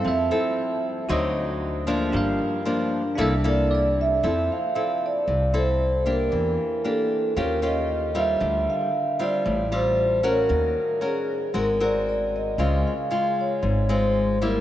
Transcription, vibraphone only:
X:1
M:4/4
L:1/8
Q:1/4=115
K:F
V:1 name="Vibraphone"
e3 z4 z | z4 z d d e- | e f2 d2 c2 B- | B2 A2 B _e2 =e- |
e f2 d2 c2 B- | B2 _A2 B d d _e- | _e f2 _d2 c2 B |]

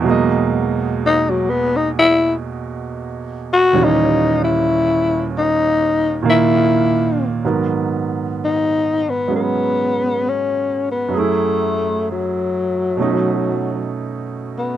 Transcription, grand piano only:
X:1
M:4/4
L:1/8
Q:"Swing" 1/4=65
K:G#m
V:1 name="Grand piano" clef=bass
[E,,B,,F,G,A,d]8 | [D,,A,,E,=G,C]4- [D,,A,,E,G,C] [A,,D,A,]3 | [G,,D,F,B,A]4 [F,G,B,C]4 | [F,,F,=A,EG]4 [B,,F,A,CD]4 |]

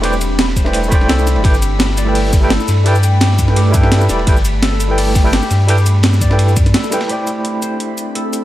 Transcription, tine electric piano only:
X:1
M:4/4
L:1/16
Q:"Swing 16ths" 1/4=170
K:Gmix
V:1 name="Tine electric piano"
[A,EBcdg] z6 [A,EBcdg]3 [A,Ecdgb]6 | [G,EABg] z6 [G,EABg]4 [G,EABg] z4 | [G,EABg] z6 [G,EABg]3 [G,EABg]6 | [G,EABg] z6 [G,EABg]4 [G,EABg] z4 |
[G,EABg] z6 [G,EABg]3 z4 [G,EABg]2 | [A,Ecdgb]16 |]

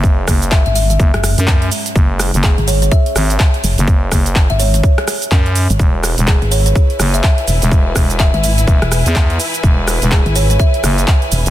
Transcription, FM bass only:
X:1
M:4/4
L:1/16
Q:"Swing 16ths" 1/4=125
K:Emix
V:1 name="FM bass" clef=bass
F,,,2 F,,,3 z3 F,,, z2 F,,3 z2 | F,,,3 F,,,2 z4 z G,,,2 z3 F,,,- | F,,,2 F,,,3 z6 z F,,3 z | E,,,3 E,,,2 z4 z F,,,2 z3 E,,,- |
E,,,2 E,,,3 z3 E,,, z2 E,,3 z2 | E,,,3 E,,,2 z4 z F,,,2 z3 E,,, |]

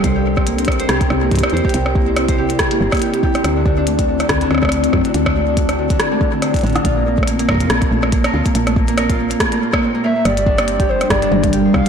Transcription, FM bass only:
X:1
M:4/4
L:1/8
Q:"Swing 16ths" 1/4=141
K:Gdor
V:1 name="FM bass" clef=bass
C,,4 C,, C,,2 E,, | C,,4 z G,,, z2 | D,,4 D,, D,,2 ^F,, | D,,4 z3 A,,, |
B,,,4 B,,, B,,,2 D,, | B,,,4 z4 | G,,,4 G,,, G,,,2 C,, |]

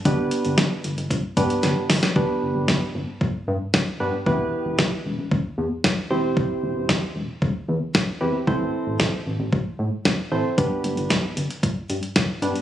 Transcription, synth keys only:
X:1
M:4/4
L:1/8
Q:1/4=114
K:G
V:1 name="Synth keys"
[B,DGB]2 z3 [B,DGB]2 z | [B,DGB]2 z4 z [B,DGB] | [B,EGB]2 z4 z [CEGc]- | [CEGc]2 z4 z [CEGB] |
[CEAc]2 z4 z [CEAc] | [B,DGB]2 z4 z [B,DGB] |]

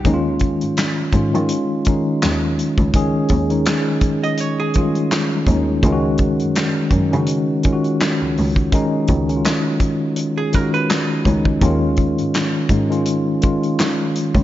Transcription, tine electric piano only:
X:1
M:4/4
L:1/16
Q:"Swing 16ths" 1/4=83
K:Ebm
V:1 name="Tine electric piano"
[E,A,DEF]4- [E,A,DEF] z [E,A,DF] [E,A,DF]2 z [E,A,DE]4- [E,A,DE] z | [E,A,DA]2 z [E,A,DE]4- [E,A,DE] z2 [E,=G,A,DF]3 z [E,A,DE]2 | [E,A,DFG]4- [E,A,DFG] z [E,A,DE] [E,A,DG]2 z [E,A,DFG]4- [E,A,DFG] z | [E,A,DE]2 z [E,A,DEF]4- [E,A,DEF] z2 [E,A,DFG]3 z [E,A,DE]2 |
[E,A,DF]4- [E,A,DF] z [E,A,DE] [E,A,DF]2 z [E,A,DF]4- [E,A,DF] z |]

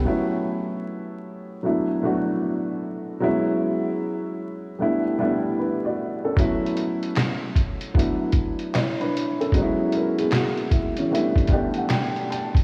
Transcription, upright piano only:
X:1
M:4/4
L:1/16
Q:"Swing 16ths" 1/4=76
K:Bm
V:1 name="Upright piano"
G z12 z3 | z12 [DB] [Fd]2 [CA]- | [CA] z8 z3 [Ec] [DB]2 [CA]- | [CA] z [C^A] [B,^G] [^A,F]2 [^G,E] [E,C]2 z d f =g2 =a2 |]
V:2 name="Upright piano"
[F,A,B,CE]8 [F,A,B,DE]2 [F,A,B,DF]6 | [F,^G,B,CE]8 [=G,A,B,DE]2 [G,A,B,DE]6 | [F,A,B,CE]8 [F,A,B,DE]2 z6 | [F,^G,B,C^DE]2 z6 [=G,A,B,=DE]2 [G,A,B,DG]6 |]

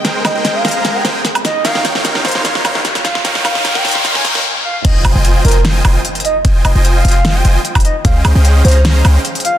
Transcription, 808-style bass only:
X:1
M:4/4
L:1/16
Q:1/4=150
K:Fm
V:1 name="808-style bass" clef=bass
A,,,2 A,,, A,,,3 A,,,4 A,,, z4 z | z16 | z16 | F,,,2 F,,, F,,,3 F,,,4 F,,, z4 z |
F,,,2 F,,, F,,,3 F,,,4 F,,, z4 z | D,,2 D,, D,,3 D,,4 D,, z4 z |]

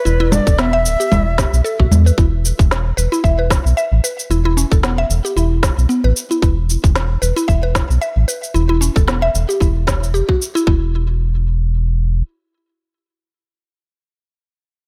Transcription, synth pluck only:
X:1
M:4/4
L:1/16
Q:"Swing 16ths" 1/4=113
K:Edor
V:1 name="Synth pluck"
E E D A B, e z G E z G z A F z B | E z4 z B E e B z2 e z B2 | E E C A B, e z G E4 B, B z E | E z4 z B E e B z2 e z B2 |
E E C A B, e z G E z c z G F z E | E2 z12 z2 | z16 |]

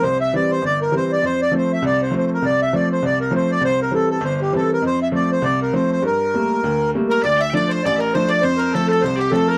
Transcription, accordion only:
X:1
M:4/4
L:1/16
Q:"Swing" 1/4=200
K:F
V:1 name="Accordion"
c2 e2 d2 c2 d2 B2 c2 d2 | c2 d2 c2 e2 d2 c2 c3/2 c/2 B2 | d2 e2 d2 c2 d2 B2 c2 d2 | c2 B2 A2 A2 c2 G2 A2 B2 |
c2 e2 d2 c2 d2 B2 c2 c2 | B12 z2 B2 | d2 e2 d2 c2 d2 B2 c2 d2 | c2 B2 A2 A2 c2 G2 A2 B2 |]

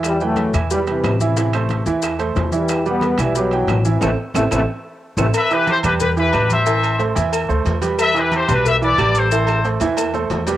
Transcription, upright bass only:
X:1
M:4/4
L:1/8
Q:1/4=181
K:Em
V:1 name="Upright bass" clef=bass
E,,3 E,,3 A,,,2- | A,,,3 E,,3 E,,2- | E,,3 B,,,3 A,,,2 | A,,, z A,,, A,,, z3 A,,, |
z3 E,,3 A,,,2- | A,,,3 E,,2 D,, E,,2- | E,,3 B,,,3 A,,,2- | A,,,3 E,,3 E,,2 |]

